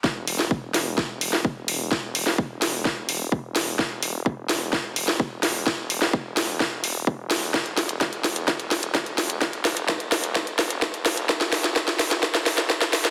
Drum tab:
HH |--o---o---o---o-|--o---o---o---o-|--o---o---o---o-|--o---o---o---o-|
SD |o--o--o-o--o----|o--o--o-o-----o-|o-----o-o--o--o-|o--o--o-o-----o-|
BD |o---o---o---o---|o---o---o---o---|o---o---o---o---|o---o---o---o---|

HH |xxoxxxoxxxoxxxox|xxoxxxoxxxoxxxox|xxoxxxoxxxoxxxox|
SD |o-o-o-o-o-o-o-o-|o-o-o-o-o-o-o-o-|oooooooooooooooo|
BD |o---o---o---o---|o---o---o---o---|o---o---o---o---|